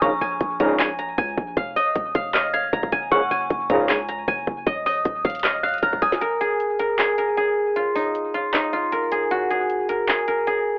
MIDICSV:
0, 0, Header, 1, 6, 480
1, 0, Start_track
1, 0, Tempo, 387097
1, 25, Time_signature, 4, 2, 24, 8
1, 13373, End_track
2, 0, Start_track
2, 0, Title_t, "Synth bell"
2, 0, Program_c, 0, 98
2, 23, Note_on_c, 0, 85, 105
2, 934, Note_off_c, 0, 85, 0
2, 2188, Note_on_c, 0, 87, 85
2, 2863, Note_off_c, 0, 87, 0
2, 2905, Note_on_c, 0, 89, 79
2, 3133, Note_off_c, 0, 89, 0
2, 3143, Note_on_c, 0, 92, 86
2, 3372, Note_off_c, 0, 92, 0
2, 3864, Note_on_c, 0, 85, 118
2, 4774, Note_off_c, 0, 85, 0
2, 6027, Note_on_c, 0, 87, 78
2, 6703, Note_off_c, 0, 87, 0
2, 6747, Note_on_c, 0, 89, 75
2, 6974, Note_off_c, 0, 89, 0
2, 6984, Note_on_c, 0, 90, 81
2, 7212, Note_off_c, 0, 90, 0
2, 7225, Note_on_c, 0, 89, 81
2, 7453, Note_off_c, 0, 89, 0
2, 7464, Note_on_c, 0, 87, 86
2, 7692, Note_off_c, 0, 87, 0
2, 13373, End_track
3, 0, Start_track
3, 0, Title_t, "Guzheng"
3, 0, Program_c, 1, 107
3, 0, Note_on_c, 1, 75, 77
3, 0, Note_on_c, 1, 77, 79
3, 0, Note_on_c, 1, 80, 77
3, 24, Note_on_c, 1, 82, 86
3, 259, Note_off_c, 1, 80, 0
3, 264, Note_on_c, 1, 80, 82
3, 740, Note_off_c, 1, 82, 0
3, 745, Note_on_c, 1, 82, 81
3, 979, Note_off_c, 1, 80, 0
3, 984, Note_on_c, 1, 80, 87
3, 1220, Note_off_c, 1, 82, 0
3, 1225, Note_on_c, 1, 82, 82
3, 1278, Note_off_c, 1, 75, 0
3, 1367, Note_off_c, 1, 77, 0
3, 1458, Note_off_c, 1, 80, 0
3, 1463, Note_on_c, 1, 80, 91
3, 1946, Note_on_c, 1, 77, 76
3, 2186, Note_on_c, 1, 75, 83
3, 2660, Note_off_c, 1, 77, 0
3, 2665, Note_on_c, 1, 77, 81
3, 2899, Note_off_c, 1, 75, 0
3, 2904, Note_on_c, 1, 75, 84
3, 2960, Note_off_c, 1, 82, 0
3, 3140, Note_off_c, 1, 77, 0
3, 3145, Note_on_c, 1, 77, 87
3, 3323, Note_off_c, 1, 80, 0
3, 3385, Note_on_c, 1, 82, 86
3, 3624, Note_on_c, 1, 80, 79
3, 3863, Note_on_c, 1, 78, 90
3, 3937, Note_off_c, 1, 77, 0
3, 4099, Note_off_c, 1, 80, 0
3, 4104, Note_on_c, 1, 80, 83
3, 4579, Note_off_c, 1, 82, 0
3, 4584, Note_on_c, 1, 82, 83
3, 4820, Note_off_c, 1, 80, 0
3, 4825, Note_on_c, 1, 80, 85
3, 5061, Note_off_c, 1, 82, 0
3, 5066, Note_on_c, 1, 82, 79
3, 5116, Note_off_c, 1, 75, 0
3, 5301, Note_off_c, 1, 80, 0
3, 5306, Note_on_c, 1, 80, 86
3, 5785, Note_on_c, 1, 75, 89
3, 5856, Note_off_c, 1, 78, 0
3, 6022, Note_off_c, 1, 75, 0
3, 6027, Note_on_c, 1, 75, 84
3, 6507, Note_on_c, 1, 77, 80
3, 6741, Note_off_c, 1, 75, 0
3, 6746, Note_on_c, 1, 75, 80
3, 6802, Note_off_c, 1, 82, 0
3, 6980, Note_off_c, 1, 77, 0
3, 6985, Note_on_c, 1, 77, 84
3, 7166, Note_off_c, 1, 80, 0
3, 7225, Note_on_c, 1, 82, 87
3, 7464, Note_on_c, 1, 80, 79
3, 7704, Note_on_c, 1, 70, 85
3, 7945, Note_on_c, 1, 68, 82
3, 8420, Note_off_c, 1, 70, 0
3, 8425, Note_on_c, 1, 70, 81
3, 8659, Note_off_c, 1, 68, 0
3, 8664, Note_on_c, 1, 68, 86
3, 8899, Note_off_c, 1, 70, 0
3, 8904, Note_on_c, 1, 70, 76
3, 8958, Note_off_c, 1, 75, 0
3, 8960, Note_off_c, 1, 82, 0
3, 9049, Note_off_c, 1, 77, 0
3, 9138, Note_off_c, 1, 68, 0
3, 9143, Note_on_c, 1, 68, 87
3, 9324, Note_off_c, 1, 80, 0
3, 9623, Note_on_c, 1, 65, 75
3, 9863, Note_on_c, 1, 63, 79
3, 10339, Note_off_c, 1, 65, 0
3, 10344, Note_on_c, 1, 65, 79
3, 10579, Note_off_c, 1, 63, 0
3, 10584, Note_on_c, 1, 63, 86
3, 10820, Note_off_c, 1, 65, 0
3, 10825, Note_on_c, 1, 65, 81
3, 11060, Note_off_c, 1, 70, 0
3, 11065, Note_on_c, 1, 70, 83
3, 11301, Note_off_c, 1, 68, 0
3, 11306, Note_on_c, 1, 68, 77
3, 11545, Note_on_c, 1, 66, 85
3, 11619, Note_off_c, 1, 65, 0
3, 11779, Note_off_c, 1, 68, 0
3, 11784, Note_on_c, 1, 68, 81
3, 12259, Note_off_c, 1, 70, 0
3, 12264, Note_on_c, 1, 70, 78
3, 12500, Note_off_c, 1, 68, 0
3, 12505, Note_on_c, 1, 68, 84
3, 12739, Note_off_c, 1, 70, 0
3, 12744, Note_on_c, 1, 70, 77
3, 12980, Note_off_c, 1, 68, 0
3, 12985, Note_on_c, 1, 68, 86
3, 13373, Note_off_c, 1, 63, 0
3, 13373, Note_off_c, 1, 66, 0
3, 13373, Note_off_c, 1, 68, 0
3, 13373, Note_off_c, 1, 70, 0
3, 13373, End_track
4, 0, Start_track
4, 0, Title_t, "Brass ensemble"
4, 0, Program_c, 2, 61
4, 24, Note_on_c, 2, 44, 93
4, 24, Note_on_c, 2, 46, 89
4, 24, Note_on_c, 2, 49, 97
4, 133, Note_off_c, 2, 44, 0
4, 133, Note_off_c, 2, 46, 0
4, 133, Note_off_c, 2, 49, 0
4, 744, Note_on_c, 2, 44, 105
4, 744, Note_on_c, 2, 46, 99
4, 744, Note_on_c, 2, 49, 115
4, 1093, Note_off_c, 2, 44, 0
4, 1093, Note_off_c, 2, 46, 0
4, 1093, Note_off_c, 2, 49, 0
4, 3864, Note_on_c, 2, 49, 98
4, 3865, Note_on_c, 2, 44, 85
4, 3865, Note_on_c, 2, 46, 85
4, 3973, Note_off_c, 2, 44, 0
4, 3973, Note_off_c, 2, 46, 0
4, 3973, Note_off_c, 2, 49, 0
4, 4585, Note_on_c, 2, 44, 103
4, 4585, Note_on_c, 2, 46, 98
4, 4585, Note_on_c, 2, 49, 115
4, 4933, Note_off_c, 2, 44, 0
4, 4933, Note_off_c, 2, 46, 0
4, 4933, Note_off_c, 2, 49, 0
4, 13373, End_track
5, 0, Start_track
5, 0, Title_t, "808-style bass"
5, 0, Program_c, 3, 38
5, 25, Note_on_c, 3, 34, 116
5, 255, Note_off_c, 3, 34, 0
5, 265, Note_on_c, 3, 34, 101
5, 495, Note_off_c, 3, 34, 0
5, 505, Note_on_c, 3, 34, 106
5, 735, Note_off_c, 3, 34, 0
5, 745, Note_on_c, 3, 34, 106
5, 1436, Note_off_c, 3, 34, 0
5, 1465, Note_on_c, 3, 37, 110
5, 1695, Note_off_c, 3, 37, 0
5, 1705, Note_on_c, 3, 34, 105
5, 1936, Note_off_c, 3, 34, 0
5, 1945, Note_on_c, 3, 29, 112
5, 2175, Note_off_c, 3, 29, 0
5, 2425, Note_on_c, 3, 27, 104
5, 2655, Note_off_c, 3, 27, 0
5, 2665, Note_on_c, 3, 29, 110
5, 3356, Note_off_c, 3, 29, 0
5, 3384, Note_on_c, 3, 29, 107
5, 3625, Note_on_c, 3, 30, 104
5, 3644, Note_off_c, 3, 29, 0
5, 3853, Note_off_c, 3, 30, 0
5, 3864, Note_on_c, 3, 30, 115
5, 4095, Note_off_c, 3, 30, 0
5, 4104, Note_on_c, 3, 30, 104
5, 4335, Note_off_c, 3, 30, 0
5, 4345, Note_on_c, 3, 30, 109
5, 4575, Note_off_c, 3, 30, 0
5, 4585, Note_on_c, 3, 37, 108
5, 5276, Note_off_c, 3, 37, 0
5, 5305, Note_on_c, 3, 30, 105
5, 5535, Note_off_c, 3, 30, 0
5, 5546, Note_on_c, 3, 30, 109
5, 5776, Note_off_c, 3, 30, 0
5, 5785, Note_on_c, 3, 27, 117
5, 6246, Note_off_c, 3, 27, 0
5, 6265, Note_on_c, 3, 27, 108
5, 6495, Note_off_c, 3, 27, 0
5, 6506, Note_on_c, 3, 27, 111
5, 7196, Note_off_c, 3, 27, 0
5, 7225, Note_on_c, 3, 27, 110
5, 7686, Note_off_c, 3, 27, 0
5, 13373, End_track
6, 0, Start_track
6, 0, Title_t, "Drums"
6, 25, Note_on_c, 9, 36, 114
6, 25, Note_on_c, 9, 42, 88
6, 149, Note_off_c, 9, 36, 0
6, 149, Note_off_c, 9, 42, 0
6, 266, Note_on_c, 9, 42, 82
6, 390, Note_off_c, 9, 42, 0
6, 504, Note_on_c, 9, 42, 85
6, 505, Note_on_c, 9, 36, 91
6, 628, Note_off_c, 9, 42, 0
6, 629, Note_off_c, 9, 36, 0
6, 744, Note_on_c, 9, 42, 94
6, 745, Note_on_c, 9, 36, 95
6, 868, Note_off_c, 9, 42, 0
6, 869, Note_off_c, 9, 36, 0
6, 984, Note_on_c, 9, 42, 71
6, 986, Note_on_c, 9, 39, 115
6, 1108, Note_off_c, 9, 42, 0
6, 1110, Note_off_c, 9, 39, 0
6, 1225, Note_on_c, 9, 42, 70
6, 1349, Note_off_c, 9, 42, 0
6, 1463, Note_on_c, 9, 42, 75
6, 1465, Note_on_c, 9, 36, 105
6, 1587, Note_off_c, 9, 42, 0
6, 1589, Note_off_c, 9, 36, 0
6, 1705, Note_on_c, 9, 36, 92
6, 1829, Note_off_c, 9, 36, 0
6, 1944, Note_on_c, 9, 42, 91
6, 1945, Note_on_c, 9, 36, 116
6, 2068, Note_off_c, 9, 42, 0
6, 2069, Note_off_c, 9, 36, 0
6, 2186, Note_on_c, 9, 46, 87
6, 2310, Note_off_c, 9, 46, 0
6, 2424, Note_on_c, 9, 42, 84
6, 2425, Note_on_c, 9, 36, 93
6, 2548, Note_off_c, 9, 42, 0
6, 2549, Note_off_c, 9, 36, 0
6, 2664, Note_on_c, 9, 42, 85
6, 2665, Note_on_c, 9, 36, 98
6, 2788, Note_off_c, 9, 42, 0
6, 2789, Note_off_c, 9, 36, 0
6, 2903, Note_on_c, 9, 42, 71
6, 2905, Note_on_c, 9, 39, 110
6, 3027, Note_off_c, 9, 42, 0
6, 3029, Note_off_c, 9, 39, 0
6, 3144, Note_on_c, 9, 42, 70
6, 3268, Note_off_c, 9, 42, 0
6, 3383, Note_on_c, 9, 42, 76
6, 3384, Note_on_c, 9, 36, 105
6, 3507, Note_off_c, 9, 42, 0
6, 3508, Note_off_c, 9, 36, 0
6, 3511, Note_on_c, 9, 36, 91
6, 3623, Note_on_c, 9, 42, 97
6, 3625, Note_off_c, 9, 36, 0
6, 3625, Note_on_c, 9, 36, 92
6, 3747, Note_off_c, 9, 42, 0
6, 3749, Note_off_c, 9, 36, 0
6, 3864, Note_on_c, 9, 36, 113
6, 3864, Note_on_c, 9, 42, 85
6, 3988, Note_off_c, 9, 36, 0
6, 3988, Note_off_c, 9, 42, 0
6, 4106, Note_on_c, 9, 42, 83
6, 4230, Note_off_c, 9, 42, 0
6, 4344, Note_on_c, 9, 42, 83
6, 4345, Note_on_c, 9, 36, 90
6, 4468, Note_off_c, 9, 42, 0
6, 4469, Note_off_c, 9, 36, 0
6, 4584, Note_on_c, 9, 42, 94
6, 4585, Note_on_c, 9, 36, 94
6, 4708, Note_off_c, 9, 42, 0
6, 4709, Note_off_c, 9, 36, 0
6, 4823, Note_on_c, 9, 42, 73
6, 4825, Note_on_c, 9, 39, 108
6, 4947, Note_off_c, 9, 42, 0
6, 4949, Note_off_c, 9, 39, 0
6, 5065, Note_on_c, 9, 42, 69
6, 5189, Note_off_c, 9, 42, 0
6, 5304, Note_on_c, 9, 42, 76
6, 5305, Note_on_c, 9, 36, 101
6, 5428, Note_off_c, 9, 42, 0
6, 5429, Note_off_c, 9, 36, 0
6, 5546, Note_on_c, 9, 36, 90
6, 5670, Note_off_c, 9, 36, 0
6, 5785, Note_on_c, 9, 36, 115
6, 5785, Note_on_c, 9, 42, 86
6, 5909, Note_off_c, 9, 36, 0
6, 5909, Note_off_c, 9, 42, 0
6, 6026, Note_on_c, 9, 46, 87
6, 6150, Note_off_c, 9, 46, 0
6, 6264, Note_on_c, 9, 42, 85
6, 6265, Note_on_c, 9, 36, 93
6, 6388, Note_off_c, 9, 42, 0
6, 6389, Note_off_c, 9, 36, 0
6, 6505, Note_on_c, 9, 42, 73
6, 6506, Note_on_c, 9, 36, 94
6, 6568, Note_off_c, 9, 42, 0
6, 6568, Note_on_c, 9, 42, 73
6, 6630, Note_off_c, 9, 36, 0
6, 6632, Note_off_c, 9, 42, 0
6, 6632, Note_on_c, 9, 42, 74
6, 6688, Note_off_c, 9, 42, 0
6, 6688, Note_on_c, 9, 42, 75
6, 6744, Note_off_c, 9, 42, 0
6, 6744, Note_on_c, 9, 42, 72
6, 6746, Note_on_c, 9, 39, 113
6, 6868, Note_off_c, 9, 42, 0
6, 6870, Note_off_c, 9, 39, 0
6, 6985, Note_on_c, 9, 42, 44
6, 7048, Note_off_c, 9, 42, 0
6, 7048, Note_on_c, 9, 42, 54
6, 7113, Note_off_c, 9, 42, 0
6, 7113, Note_on_c, 9, 42, 64
6, 7168, Note_off_c, 9, 42, 0
6, 7168, Note_on_c, 9, 42, 69
6, 7223, Note_off_c, 9, 42, 0
6, 7223, Note_on_c, 9, 42, 74
6, 7225, Note_on_c, 9, 36, 66
6, 7347, Note_off_c, 9, 42, 0
6, 7349, Note_off_c, 9, 36, 0
6, 7352, Note_on_c, 9, 36, 68
6, 7464, Note_on_c, 9, 42, 96
6, 7465, Note_off_c, 9, 36, 0
6, 7465, Note_on_c, 9, 36, 101
6, 7588, Note_off_c, 9, 42, 0
6, 7589, Note_off_c, 9, 36, 0
6, 7592, Note_on_c, 9, 38, 100
6, 7705, Note_on_c, 9, 42, 86
6, 7716, Note_off_c, 9, 38, 0
6, 7829, Note_off_c, 9, 42, 0
6, 7946, Note_on_c, 9, 42, 79
6, 8070, Note_off_c, 9, 42, 0
6, 8184, Note_on_c, 9, 42, 81
6, 8308, Note_off_c, 9, 42, 0
6, 8424, Note_on_c, 9, 42, 93
6, 8548, Note_off_c, 9, 42, 0
6, 8663, Note_on_c, 9, 42, 70
6, 8665, Note_on_c, 9, 39, 109
6, 8787, Note_off_c, 9, 42, 0
6, 8789, Note_off_c, 9, 39, 0
6, 8905, Note_on_c, 9, 42, 68
6, 9029, Note_off_c, 9, 42, 0
6, 9143, Note_on_c, 9, 42, 73
6, 9267, Note_off_c, 9, 42, 0
6, 9625, Note_on_c, 9, 42, 85
6, 9749, Note_off_c, 9, 42, 0
6, 9866, Note_on_c, 9, 46, 87
6, 9990, Note_off_c, 9, 46, 0
6, 10104, Note_on_c, 9, 42, 83
6, 10228, Note_off_c, 9, 42, 0
6, 10344, Note_on_c, 9, 42, 82
6, 10468, Note_off_c, 9, 42, 0
6, 10584, Note_on_c, 9, 42, 71
6, 10586, Note_on_c, 9, 39, 113
6, 10708, Note_off_c, 9, 42, 0
6, 10710, Note_off_c, 9, 39, 0
6, 10825, Note_on_c, 9, 42, 68
6, 10949, Note_off_c, 9, 42, 0
6, 11064, Note_on_c, 9, 42, 76
6, 11188, Note_off_c, 9, 42, 0
6, 11304, Note_on_c, 9, 42, 96
6, 11428, Note_off_c, 9, 42, 0
6, 11545, Note_on_c, 9, 42, 90
6, 11669, Note_off_c, 9, 42, 0
6, 11787, Note_on_c, 9, 42, 80
6, 11911, Note_off_c, 9, 42, 0
6, 12024, Note_on_c, 9, 42, 83
6, 12148, Note_off_c, 9, 42, 0
6, 12264, Note_on_c, 9, 42, 93
6, 12388, Note_off_c, 9, 42, 0
6, 12504, Note_on_c, 9, 42, 70
6, 12505, Note_on_c, 9, 39, 106
6, 12628, Note_off_c, 9, 42, 0
6, 12629, Note_off_c, 9, 39, 0
6, 12745, Note_on_c, 9, 42, 67
6, 12869, Note_off_c, 9, 42, 0
6, 12984, Note_on_c, 9, 42, 73
6, 13108, Note_off_c, 9, 42, 0
6, 13373, End_track
0, 0, End_of_file